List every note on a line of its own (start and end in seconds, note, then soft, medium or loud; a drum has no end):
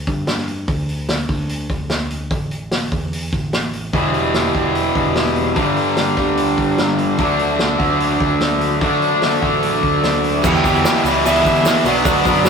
0.07 0.64 G2 medium
0.07 kick medium
0.07 open hi-hat soft
0.27 snare medium
0.27 open hi-hat medium
0.38 snare soft
0.48 open hi-hat soft
0.68 1.25 D2 medium
0.68 kick medium
0.68 open hi-hat medium
0.89 open hi-hat soft
1.09 snare loud
1.09 open hi-hat medium
1.29 1.67 D2 medium
1.29 kick medium
1.29 open hi-hat soft
1.49 open hi-hat medium
1.70 2.31 D2 medium
1.70 kick medium
1.70 open hi-hat soft
1.90 snare medium
1.90 open hi-hat medium
2.10 open hi-hat soft
2.31 2.88 A1 medium
2.31 kick medium
2.31 open hi-hat medium
2.51 open hi-hat soft
2.71 snare loud
2.71 open hi-hat medium
2.92 3.30 E2 medium
2.92 kick medium
2.92 open hi-hat soft
3.13 open hi-hat medium
3.33 3.90 A1 medium
3.33 kick medium
3.33 open hi-hat soft
3.53 snare loud
3.53 open hi-hat medium
3.73 open hi-hat soft
3.93 4.50 E1 medium
3.93 4.53 E2 medium
3.93 4.54 B2 medium
3.93 4.54 E3 medium
3.93 4.55 G3 medium
3.93 4.54 B3 medium
3.93 kick medium
3.93 open hi-hat medium
3.97 4.53 G4 medium
4.14 open hi-hat soft
4.34 snare loud
4.34 open hi-hat medium
4.54 4.92 E1 medium
4.54 5.56 B2 medium
4.54 5.56 E3 medium
4.54 5.55 G3 medium
4.54 5.55 B3 medium
4.54 5.55 G4 medium
4.54 kick medium
4.54 open hi-hat soft
4.58 5.55 E2 medium
4.75 open hi-hat medium
4.95 5.56 E1 medium
4.95 kick medium
4.95 open hi-hat soft
5.16 snare loud
5.16 open hi-hat medium
5.26 snare soft
5.36 open hi-hat medium
5.55 6.13 G1 medium
5.55 6.16 G2 medium
5.55 6.16 D3 medium
5.55 6.17 G3 medium
5.55 6.17 B3 medium
5.55 6.17 D4 medium
5.55 6.16 G4 medium
5.55 kick loud
5.55 open hi-hat medium
5.77 open hi-hat soft
5.97 snare loud
5.97 open hi-hat medium
6.17 6.55 D2 medium
6.17 7.19 G2 medium
6.17 7.17 D3 medium
6.17 7.19 G3 medium
6.17 7.18 B3 medium
6.17 7.21 D4 medium
6.17 7.17 G4 medium
6.17 kick medium
6.17 snare soft
6.17 open hi-hat soft
6.37 open hi-hat medium
6.58 7.15 G1 medium
6.58 kick medium
6.58 open hi-hat soft
6.78 snare medium
6.78 open hi-hat medium
6.88 snare soft
6.98 open hi-hat soft
7.18 7.76 D2 medium
7.18 7.82 D3 medium
7.18 7.81 F#3 medium
7.18 7.80 A3 medium
7.18 7.79 D4 medium
7.18 kick loud
7.18 open hi-hat medium
7.23 7.78 F#4 medium
7.39 open hi-hat soft
7.59 snare loud
7.59 open hi-hat medium
7.78 8.17 D2 medium
7.78 8.81 F#3 medium
7.78 8.81 A3 medium
7.78 8.80 D4 medium
7.78 8.80 F#4 medium
7.78 kick medium
7.78 open hi-hat soft
7.82 8.80 D3 medium
8.00 open hi-hat medium
8.20 8.81 D2 medium
8.20 kick medium
8.20 open hi-hat soft
8.41 snare medium
8.41 open hi-hat medium
8.61 open hi-hat soft
8.81 9.38 D3 medium
8.81 9.41 D3 medium
8.81 9.42 F#3 medium
8.81 9.42 A3 medium
8.81 9.41 D4 medium
8.81 kick loud
8.81 open hi-hat medium
8.85 9.40 F#4 medium
9.02 open hi-hat soft
9.22 snare loud
9.22 open hi-hat medium
9.41 9.80 A1 medium
9.41 10.44 D3 medium
9.41 10.43 F#3 medium
9.41 10.43 A3 medium
9.41 10.42 D4 medium
9.41 10.42 F#4 medium
9.41 kick medium
9.63 open hi-hat medium
9.83 10.40 D2 medium
9.83 kick medium
9.83 open hi-hat soft
10.03 snare medium
10.03 open hi-hat medium
10.24 open hi-hat medium
10.43 10.62 E2 medium
10.43 10.63 E2 loud
10.43 10.63 B2 medium
10.43 10.64 E3 medium
10.43 10.64 G3 loud
10.43 11.84 B3 medium
10.43 10.66 B3 medium
10.43 11.84 E4 medium
10.43 10.65 E4 loud
10.43 11.84 G4 medium
10.43 11.84 B4 medium
10.43 11.02 G5 loud
10.43 kick loud
10.43 crash loud
10.43 shaker medium
10.54 shaker soft
10.64 10.83 E2 medium
10.64 10.84 B2 loud
10.64 10.84 E3 medium
10.64 10.85 G3 loud
10.64 10.86 B3 loud
10.64 10.86 E4 loud
10.64 kick medium
10.64 open hi-hat medium
10.64 shaker medium
10.75 shaker soft
10.84 11.03 E2 loud
10.84 11.04 B2 loud
10.84 11.05 E3 loud
10.84 11.05 G3 loud
10.84 11.06 B3 loud
10.84 11.06 E4 loud
10.84 snare loud
10.84 open hi-hat medium
10.84 shaker medium
11.04 11.41 C#2 medium
11.04 11.23 E2 medium
11.04 11.24 B2 medium
11.04 11.24 E3 medium
11.04 11.25 G3 medium
11.04 11.26 B3 medium
11.04 11.26 E4 medium
11.04 open hi-hat medium
11.04 shaker medium
11.24 11.44 E2 medium
11.24 11.44 B2 loud
11.24 11.44 E3 loud
11.24 11.45 G3 medium
11.24 11.47 B3 loud
11.24 11.46 E4 loud
11.24 11.64 E5 loud
11.24 open hi-hat medium
11.24 shaker medium
11.45 11.64 E2 medium
11.45 11.65 B2 medium
11.45 11.64 E3 loud
11.45 11.66 E3 loud
11.45 11.66 G3 medium
11.45 11.67 B3 medium
11.45 11.67 E4 loud
11.45 kick medium
11.45 open hi-hat medium
11.45 shaker medium
11.56 shaker soft
11.65 11.84 E2 medium
11.65 11.85 B2 loud
11.65 11.85 E3 medium
11.65 11.85 G3 medium
11.65 11.87 B3 loud
11.65 11.86 E4 medium
11.65 snare loud
11.65 open hi-hat medium
11.65 shaker medium
11.84 12.03 B1 medium
11.84 12.04 B2 loud
11.84 12.05 F#3 medium
11.84 12.49 B3 medium
11.84 12.06 B3 loud
11.84 12.49 D4 medium
11.84 12.07 D4 loud
11.84 12.49 F#4 medium
11.84 12.49 B4 medium
11.84 11.92 D5 loud
11.84 open hi-hat medium
11.84 shaker medium
11.88 12.07 F#4 loud
12.05 12.24 D2 loud
12.05 12.24 B2 medium
12.05 12.25 F#3 medium
12.05 12.26 B3 medium
12.05 12.27 D4 loud
12.05 12.27 F#4 loud
12.05 12.47 D5 loud
12.05 kick loud
12.05 open hi-hat medium
12.05 shaker medium
12.25 12.49 F#2 medium
12.25 12.45 B2 medium
12.25 12.45 F#3 medium
12.25 12.46 B3 medium
12.25 12.47 D4 loud
12.25 12.47 F#4 medium
12.25 kick medium
12.25 open hi-hat medium
12.25 shaker medium
12.35 shaker soft
12.45 12.49 B2 medium
12.45 12.49 F#3 medium
12.45 12.49 B4 medium
12.45 snare loud
12.45 open hi-hat medium
12.45 shaker loud